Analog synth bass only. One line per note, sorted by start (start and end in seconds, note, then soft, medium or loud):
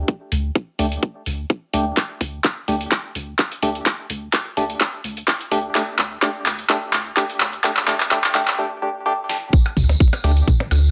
0.32 0.50 D2 loud
0.79 0.97 D2 loud
1.26 1.44 D2 medium
1.74 1.92 D2 medium
2.21 2.39 D2 loud
2.68 2.86 D2 loud
3.15 3.33 D2 medium
3.63 3.81 D2 medium
4.10 4.28 D2 loud
4.57 4.75 D2 loud
5.04 5.22 D2 medium
5.52 5.69 D2 medium
5.99 6.17 D2 medium
6.46 6.64 D2 loud
6.93 7.11 D2 medium
7.40 7.58 D2 medium
7.88 8.06 D2 loud
8.35 8.53 D2 loud
9.77 9.95 D2 medium
10.24 10.42 D2 loud
10.71 10.89 D2 medium